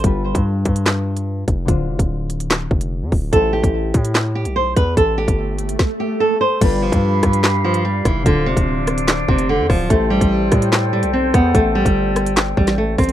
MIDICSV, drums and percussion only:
0, 0, Header, 1, 2, 480
1, 0, Start_track
1, 0, Key_signature, 0, "minor"
1, 0, Tempo, 410959
1, 46, Time_signature, 4, 2, 24, 8
1, 15326, End_track
2, 0, Start_track
2, 0, Title_t, "Drums"
2, 46, Note_on_c, 9, 36, 113
2, 46, Note_on_c, 9, 42, 83
2, 163, Note_off_c, 9, 36, 0
2, 163, Note_off_c, 9, 42, 0
2, 406, Note_on_c, 9, 36, 100
2, 411, Note_on_c, 9, 42, 80
2, 523, Note_off_c, 9, 36, 0
2, 528, Note_off_c, 9, 42, 0
2, 764, Note_on_c, 9, 42, 82
2, 766, Note_on_c, 9, 36, 94
2, 881, Note_off_c, 9, 42, 0
2, 882, Note_off_c, 9, 36, 0
2, 886, Note_on_c, 9, 42, 86
2, 1003, Note_off_c, 9, 42, 0
2, 1006, Note_on_c, 9, 38, 121
2, 1013, Note_on_c, 9, 39, 101
2, 1123, Note_off_c, 9, 38, 0
2, 1129, Note_off_c, 9, 39, 0
2, 1362, Note_on_c, 9, 42, 67
2, 1479, Note_off_c, 9, 42, 0
2, 1726, Note_on_c, 9, 36, 95
2, 1726, Note_on_c, 9, 42, 75
2, 1843, Note_off_c, 9, 36, 0
2, 1843, Note_off_c, 9, 42, 0
2, 1966, Note_on_c, 9, 36, 117
2, 1966, Note_on_c, 9, 42, 79
2, 2083, Note_off_c, 9, 36, 0
2, 2083, Note_off_c, 9, 42, 0
2, 2326, Note_on_c, 9, 36, 97
2, 2331, Note_on_c, 9, 42, 81
2, 2443, Note_off_c, 9, 36, 0
2, 2447, Note_off_c, 9, 42, 0
2, 2684, Note_on_c, 9, 42, 80
2, 2801, Note_off_c, 9, 42, 0
2, 2806, Note_on_c, 9, 42, 85
2, 2923, Note_off_c, 9, 42, 0
2, 2924, Note_on_c, 9, 42, 77
2, 2926, Note_on_c, 9, 38, 124
2, 2933, Note_on_c, 9, 39, 97
2, 3041, Note_off_c, 9, 42, 0
2, 3043, Note_off_c, 9, 38, 0
2, 3049, Note_off_c, 9, 39, 0
2, 3165, Note_on_c, 9, 36, 102
2, 3282, Note_off_c, 9, 36, 0
2, 3282, Note_on_c, 9, 42, 76
2, 3398, Note_off_c, 9, 42, 0
2, 3646, Note_on_c, 9, 36, 95
2, 3646, Note_on_c, 9, 46, 54
2, 3763, Note_off_c, 9, 36, 0
2, 3763, Note_off_c, 9, 46, 0
2, 3886, Note_on_c, 9, 36, 116
2, 3886, Note_on_c, 9, 42, 85
2, 4003, Note_off_c, 9, 36, 0
2, 4003, Note_off_c, 9, 42, 0
2, 4246, Note_on_c, 9, 36, 100
2, 4250, Note_on_c, 9, 42, 77
2, 4363, Note_off_c, 9, 36, 0
2, 4367, Note_off_c, 9, 42, 0
2, 4604, Note_on_c, 9, 42, 82
2, 4606, Note_on_c, 9, 36, 93
2, 4720, Note_off_c, 9, 42, 0
2, 4722, Note_off_c, 9, 36, 0
2, 4726, Note_on_c, 9, 42, 85
2, 4843, Note_off_c, 9, 42, 0
2, 4846, Note_on_c, 9, 38, 120
2, 4852, Note_on_c, 9, 39, 97
2, 4962, Note_off_c, 9, 38, 0
2, 4969, Note_off_c, 9, 39, 0
2, 5201, Note_on_c, 9, 42, 68
2, 5318, Note_off_c, 9, 42, 0
2, 5566, Note_on_c, 9, 36, 95
2, 5566, Note_on_c, 9, 42, 76
2, 5683, Note_off_c, 9, 36, 0
2, 5683, Note_off_c, 9, 42, 0
2, 5806, Note_on_c, 9, 36, 110
2, 5806, Note_on_c, 9, 42, 81
2, 5923, Note_off_c, 9, 36, 0
2, 5923, Note_off_c, 9, 42, 0
2, 6166, Note_on_c, 9, 36, 95
2, 6170, Note_on_c, 9, 42, 79
2, 6283, Note_off_c, 9, 36, 0
2, 6287, Note_off_c, 9, 42, 0
2, 6524, Note_on_c, 9, 42, 85
2, 6640, Note_off_c, 9, 42, 0
2, 6646, Note_on_c, 9, 42, 86
2, 6762, Note_off_c, 9, 42, 0
2, 6766, Note_on_c, 9, 36, 111
2, 6766, Note_on_c, 9, 38, 94
2, 6883, Note_off_c, 9, 36, 0
2, 6883, Note_off_c, 9, 38, 0
2, 7726, Note_on_c, 9, 36, 120
2, 7726, Note_on_c, 9, 42, 85
2, 7726, Note_on_c, 9, 49, 106
2, 7843, Note_off_c, 9, 36, 0
2, 7843, Note_off_c, 9, 42, 0
2, 7843, Note_off_c, 9, 49, 0
2, 8086, Note_on_c, 9, 36, 99
2, 8091, Note_on_c, 9, 42, 82
2, 8203, Note_off_c, 9, 36, 0
2, 8207, Note_off_c, 9, 42, 0
2, 8444, Note_on_c, 9, 42, 82
2, 8445, Note_on_c, 9, 36, 98
2, 8446, Note_on_c, 9, 37, 108
2, 8560, Note_off_c, 9, 42, 0
2, 8562, Note_off_c, 9, 36, 0
2, 8563, Note_off_c, 9, 37, 0
2, 8566, Note_on_c, 9, 42, 88
2, 8682, Note_off_c, 9, 42, 0
2, 8685, Note_on_c, 9, 38, 127
2, 8692, Note_on_c, 9, 39, 103
2, 8802, Note_off_c, 9, 38, 0
2, 8809, Note_off_c, 9, 39, 0
2, 9041, Note_on_c, 9, 42, 68
2, 9158, Note_off_c, 9, 42, 0
2, 9406, Note_on_c, 9, 36, 99
2, 9406, Note_on_c, 9, 37, 96
2, 9406, Note_on_c, 9, 42, 76
2, 9523, Note_off_c, 9, 36, 0
2, 9523, Note_off_c, 9, 37, 0
2, 9523, Note_off_c, 9, 42, 0
2, 9646, Note_on_c, 9, 36, 115
2, 9646, Note_on_c, 9, 42, 84
2, 9763, Note_off_c, 9, 36, 0
2, 9763, Note_off_c, 9, 42, 0
2, 10006, Note_on_c, 9, 36, 101
2, 10010, Note_on_c, 9, 42, 81
2, 10123, Note_off_c, 9, 36, 0
2, 10127, Note_off_c, 9, 42, 0
2, 10364, Note_on_c, 9, 42, 86
2, 10366, Note_on_c, 9, 37, 108
2, 10480, Note_off_c, 9, 42, 0
2, 10483, Note_off_c, 9, 37, 0
2, 10486, Note_on_c, 9, 42, 88
2, 10603, Note_off_c, 9, 42, 0
2, 10604, Note_on_c, 9, 42, 80
2, 10606, Note_on_c, 9, 38, 127
2, 10612, Note_on_c, 9, 39, 104
2, 10721, Note_off_c, 9, 42, 0
2, 10722, Note_off_c, 9, 38, 0
2, 10729, Note_off_c, 9, 39, 0
2, 10845, Note_on_c, 9, 36, 103
2, 10962, Note_off_c, 9, 36, 0
2, 10962, Note_on_c, 9, 42, 77
2, 11078, Note_off_c, 9, 42, 0
2, 11326, Note_on_c, 9, 36, 102
2, 11326, Note_on_c, 9, 37, 93
2, 11326, Note_on_c, 9, 46, 55
2, 11443, Note_off_c, 9, 36, 0
2, 11443, Note_off_c, 9, 37, 0
2, 11443, Note_off_c, 9, 46, 0
2, 11566, Note_on_c, 9, 36, 121
2, 11566, Note_on_c, 9, 42, 82
2, 11683, Note_off_c, 9, 36, 0
2, 11683, Note_off_c, 9, 42, 0
2, 11926, Note_on_c, 9, 36, 99
2, 11930, Note_on_c, 9, 42, 80
2, 12043, Note_off_c, 9, 36, 0
2, 12047, Note_off_c, 9, 42, 0
2, 12284, Note_on_c, 9, 42, 87
2, 12285, Note_on_c, 9, 36, 95
2, 12286, Note_on_c, 9, 37, 109
2, 12400, Note_off_c, 9, 42, 0
2, 12402, Note_off_c, 9, 36, 0
2, 12403, Note_off_c, 9, 37, 0
2, 12406, Note_on_c, 9, 42, 90
2, 12523, Note_off_c, 9, 42, 0
2, 12526, Note_on_c, 9, 38, 126
2, 12533, Note_on_c, 9, 39, 100
2, 12643, Note_off_c, 9, 38, 0
2, 12649, Note_off_c, 9, 39, 0
2, 12882, Note_on_c, 9, 42, 69
2, 12998, Note_off_c, 9, 42, 0
2, 13246, Note_on_c, 9, 36, 98
2, 13246, Note_on_c, 9, 37, 95
2, 13246, Note_on_c, 9, 42, 80
2, 13363, Note_off_c, 9, 36, 0
2, 13363, Note_off_c, 9, 37, 0
2, 13363, Note_off_c, 9, 42, 0
2, 13486, Note_on_c, 9, 36, 116
2, 13487, Note_on_c, 9, 42, 87
2, 13603, Note_off_c, 9, 36, 0
2, 13603, Note_off_c, 9, 42, 0
2, 13846, Note_on_c, 9, 36, 99
2, 13851, Note_on_c, 9, 42, 80
2, 13963, Note_off_c, 9, 36, 0
2, 13967, Note_off_c, 9, 42, 0
2, 14203, Note_on_c, 9, 42, 84
2, 14206, Note_on_c, 9, 37, 110
2, 14320, Note_off_c, 9, 42, 0
2, 14323, Note_off_c, 9, 37, 0
2, 14325, Note_on_c, 9, 42, 90
2, 14442, Note_off_c, 9, 42, 0
2, 14444, Note_on_c, 9, 42, 80
2, 14445, Note_on_c, 9, 38, 127
2, 14452, Note_on_c, 9, 39, 102
2, 14560, Note_off_c, 9, 42, 0
2, 14562, Note_off_c, 9, 38, 0
2, 14569, Note_off_c, 9, 39, 0
2, 14685, Note_on_c, 9, 36, 100
2, 14801, Note_on_c, 9, 42, 79
2, 14802, Note_off_c, 9, 36, 0
2, 14806, Note_on_c, 9, 38, 79
2, 14918, Note_off_c, 9, 42, 0
2, 14923, Note_off_c, 9, 38, 0
2, 15166, Note_on_c, 9, 36, 95
2, 15166, Note_on_c, 9, 37, 93
2, 15166, Note_on_c, 9, 42, 44
2, 15166, Note_on_c, 9, 46, 55
2, 15226, Note_off_c, 9, 42, 0
2, 15226, Note_on_c, 9, 42, 55
2, 15283, Note_off_c, 9, 36, 0
2, 15283, Note_off_c, 9, 37, 0
2, 15283, Note_off_c, 9, 46, 0
2, 15286, Note_off_c, 9, 42, 0
2, 15286, Note_on_c, 9, 42, 65
2, 15326, Note_off_c, 9, 42, 0
2, 15326, End_track
0, 0, End_of_file